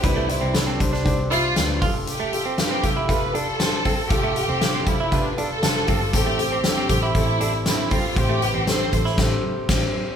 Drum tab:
CC |----------------|----------------|----------------|----------------|
HH |x-x-x-x-x-x-x-o-|x-x-x-x-x-x-x-o-|x-x-x-x-x-x-x-o-|x-x-x-x-x-x-x-o-|
SD |----o--o----o---|----o-------o---|----o-------o---|----o-------o---|
BD |o-----o-o-----o-|------o-o-----o-|o-----o-o-----o-|o-----o-o-----o-|

CC |--------x---x---|
HH |x-x-x-x---------|
SD |----o--oo---o---|
BD |o-----o-o---o---|